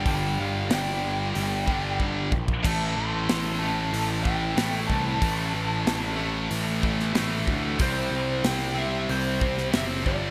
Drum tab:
CC |----------------|x---------------|----------------|----------------|
HH |o---o---o-------|----o---o---o---|o---o---o---o---|o---o---o---o---|
SD |----o-----------|----o-------o---|----o------oo---|----o------oo---|
BD |o---------o-o-oo|o---------o---o-|o---------o---o-|o---------o---o-|